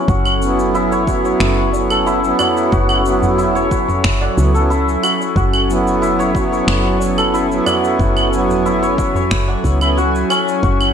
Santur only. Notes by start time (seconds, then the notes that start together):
Already playing: C#4 E4 C#5 F#5
0.09 F#4
0.75 E4
0.92 C#5
1.08 F#4
1.25 C#5
1.58 F#5
1.90 A4
2.06 E4
2.39 F#4
2.72 F#4
3.38 E4
3.55 C#5
3.71 F#4
3.88 C#5
4.21 F#5
4.54 A4
4.70 E4
5.03 F#4
5.36 F#4
6.02 E4
6.19 C#5
6.35 F#4
6.52 C#5
6.85 F#5
7.18 A4
7.34 E4
7.67 F#4
8.00 F#4
8.66 E4
8.82 C#5
8.99 F#4
9.16 C#5
9.48 F#5
9.81 E4
9.97 F#4
10.30 C#4
10.63 F#4